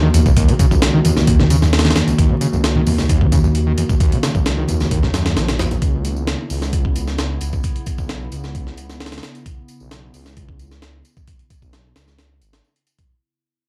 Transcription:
Already playing: D#2 D#3 A#3 F#4
0.03 D#3
0.14 D#2 E2, closed hi-hat, tambourine
0.26 C#2, kick, tambourine
0.37 D#2, kick, closed hi-hat, tambourine
0.48 D#3, closed hi-hat
0.59 C#3, kick, closed hi-hat, tambourine
0.71 C#2 F#2, kick, tambourine
0.82 snare, closed hi-hat, tambourine
0.94 D#3
1.05 D#2 E2, closed hi-hat, tambourine, high conga
1.16 C#2, snare, tambourine
1.27 D#2, kick, closed hi-hat, tambourine
1.39 D#3, snare, low conga
1.50 C#3, closed hi-hat, tambourine
1.62 F#2, snare, tambourine
1.73 snare, closed hi-hat, tambourine
1.79 snare, closed hi-hat
1.84 D#3, snare, closed hi-hat
1.90 snare, closed hi-hat
1.95 E2, snare, closed hi-hat, tambourine
2.07 C#2, closed hi-hat, tambourine
2.18 D#2, kick, closed hi-hat, tambourine
2.30 D#3
2.41 C#3, closed hi-hat, tambourine
2.53 C#2 F#2, tambourine
2.64 snare, closed hi-hat, tambourine
2.75 D#3, low conga
2.87 D#2 E2, open hi-hat, tambourine, high conga
2.98 C#2, snare, tambourine
3.09 D#2, kick, closed hi-hat, tambourine
3.21 D#3, kick
3.32 C#3, kick, closed hi-hat, tambourine
3.44 F#2, tambourine
3.55 closed hi-hat, tambourine
3.67 D#3
3.77 E2, closed hi-hat, tambourine
3.89 C#2, kick, tambourine
4.00 D#2, kick, closed hi-hat, tambourine
4.12 D#3, closed hi-hat
4.23 C#3, snare, closed hi-hat, tambourine
4.35 C#2 F#2, kick, tambourine
4.46 snare, closed hi-hat, tambourine
4.58 D#3
4.68 D#2 E2, closed hi-hat, tambourine, high conga
4.80 C#2, snare, tambourine
4.91 D#2, kick, closed hi-hat, tambourine
5.03 D#3, snare, low conga
5.14 F#2, snare, closed hi-hat, tambourine
5.26 snare, closed hi-hat, tambourine
5.37 A#1 F#3, snare, closed hi-hat, tambourine
5.48 F#2, snare, closed hi-hat
5.59 E2, snare, closed hi-hat, tambourine
5.71 D#2, closed hi-hat, tambourine
5.82 C#2 C#3 B3 E4, kick, closed hi-hat, tambourine
6.05 closed hi-hat, tambourine
6.17 tambourine
6.27 snare, closed hi-hat, tambourine
6.50 C#2, open hi-hat, tambourine
6.62 snare, tambourine
6.73 kick, closed hi-hat, tambourine
6.85 kick
6.95 closed hi-hat, tambourine
7.07 snare, tambourine
7.18 snare, closed hi-hat, tambourine
7.41 C#2, closed hi-hat, tambourine
7.53 kick, tambourine
7.63 kick, closed hi-hat, tambourine
7.76 closed hi-hat
7.86 kick, closed hi-hat, tambourine
7.98 B1, kick, tambourine
8.09 snare, closed hi-hat, tambourine
8.32 C#2, closed hi-hat, tambourine
8.44 snare, tambourine
8.55 kick, closed hi-hat, tambourine
8.67 snare
8.77 closed hi-hat, tambourine
8.89 snare, tambourine
9.00 snare, closed hi-hat, tambourine
9.06 snare, closed hi-hat
9.12 snare, closed hi-hat
9.18 snare, closed hi-hat
9.23 snare, closed hi-hat, tambourine
9.35 closed hi-hat, tambourine
9.46 kick, closed hi-hat, tambourine
9.68 closed hi-hat, tambourine
9.80 B1, tambourine
9.91 snare, closed hi-hat, tambourine
10.14 C#2, open hi-hat, tambourine
10.26 snare, tambourine
10.37 kick, closed hi-hat, tambourine
10.49 kick
10.59 closed hi-hat, tambourine
10.71 snare, tambourine
10.82 snare, closed hi-hat, tambourine
11.05 closed hi-hat, tambourine
11.17 kick, tambourine
11.27 kick, closed hi-hat, tambourine
11.39 closed hi-hat
11.50 kick, closed hi-hat, tambourine
11.62 B1, kick, tambourine
11.73 snare, closed hi-hat, tambourine
11.96 C#2, snare, closed hi-hat, tambourine
12.08 snare, tambourine
12.19 snare, closed hi-hat, tambourine
12.41 G#1, closed hi-hat, tambourine
12.53 snare, closed hi-hat, tambourine
12.64 tambourine
12.76 closed hi-hat
12.87 closed hi-hat, tambourine
12.99 kick, closed hi-hat, tambourine

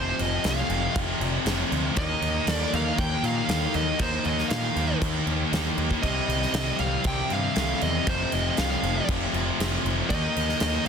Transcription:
Already playing: F1 F2 C3 F3 A3 C4 C5
0.00 F4
0.19 F1 D#5, crash
0.44 C2, snare, crash
0.49 F5
0.69 F1 F2 C3 F3, crash
0.96 F1, kick, crash
1.20 F1 A3 C4 F4, crash
1.25 F3
1.46 F1 F2 C3 F3 A3 C4, snare, crash
1.50 F4
1.72 D2, crash
1.96 D#2 D#3 A#3 D#4 D#5, kick, crash
2.01 G4
2.21 D#2, crash
2.47 D#2, snare, crash
2.52 D5
2.73 D#2 D#3 A#3 D#4 F5, crash
2.98 D#2 G5, kick, crash
3.23 A#2 A#3 D#4 G4 F5, crash
3.27 D#3
3.48 D#2 D#3 A#3 D#4, snare, crash
3.53 G4
3.74 D#2 D#5, crash
3.99 D#2 D#3 A#3 D#4 G4 C5, kick, crash
4.25 D#2 D#5, crash
4.39 snare
4.49 A#2 F5, snare, crash
4.76 D#2 D#3 A#3 D#4, crash
5.02 D#2, kick, crash
5.26 D#2 A#3 D#4 G4, crash
5.30 D#3
5.51 D#2 D#3 A#3 D#4 G4, snare, crash
5.78 D#2, crash
5.91 kick
6.02 C2 C3 D#3 G3 C4 G4 D#5, kick, crash
6.28 C2, crash
6.43 snare
6.54 C2, snare, crash
6.79 C2 C3 G3 C4 F5, crash
7.04 C2 G5, kick, crash
7.30 G2 C3 D#3 G3 C4 G4 F5, crash
7.56 C2 C3 D#3 G3 C4, snare, crash
7.60 G4
7.81 E2 D#5, crash
8.06 F1 F2 C3 F3 A3 C4 F4 C5, kick, crash
8.32 F1 D#5, crash
8.51 D#5
8.57 C2 F5, snare, crash
8.83 F1 F2 C3 F3, crash
9.09 F1, kick, crash
9.33 F1 A3 C4 F4, crash
9.37 F3
9.59 F1 F2 C3 F3 A3 C4, snare, crash
9.63 F4
9.85 F1, crash
10.09 D#2 D#3 A#3 D#4 D#5, kick, crash
10.13 G4
10.36 D#2, crash
10.49 snare
10.60 D#2, snare, crash

